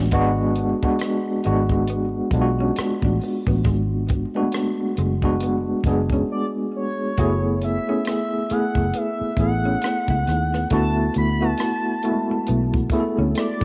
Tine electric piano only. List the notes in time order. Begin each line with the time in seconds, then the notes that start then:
Already playing: G#3 B3 D4 F4 F#4
0.12 G#3 B3 D4 F#4
0.82 G#3 B3 D4 F#4
1.45 G#3 B3 D4 F#4
2.33 G#3 B3 D4 F4
2.41 F#4
4.35 G#3 A3 D4 F#4
4.42 B3
5.23 G#3 B3 D4 F#4
5.86 G#3 B3 D4 G#4
7.18 A3 B3 E4 G#4
7.88 A3 B3 E4 G#4
8.51 A3 B3 E4 G#4
9.38 A3 B3 E4 G#4
10.71 A3 B3 E4 F#4
11.41 A3 B3 E4 F#4
12.03 A3 B3 E4 F#4
12.12 G#3
12.92 A3 B3 E4 G#4
13.00 A4